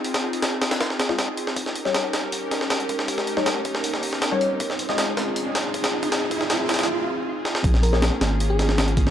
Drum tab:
HH |o-o---o-o---o-o-o---o---o---o---|o---o---o---o---o---o---o-x-o---|o---o---o---o---o---o---o---o---|o---o---o---o---o---o---o-o---o-|
SD |--o-----o---o-o-o-o-o-o-o-----o-|--o---o-o---o-------o-o-o-----o-|--o---o-o-----o---o---o-o-------|--o---o-o---o-------o-----o-----|
BD |--------------------------------|o---------------------------o---|o-----------o-------------------|o-----------------------o-----o-|

HH |o---o---o---oooo----------------|o---o---o---o---o---o---o-x-o---|
SD |o-----o-o---oooo------------o-o-|--o---o-o---o-------o-o-o-----o-|
BD |----o---------------------------|o---------------------------o---|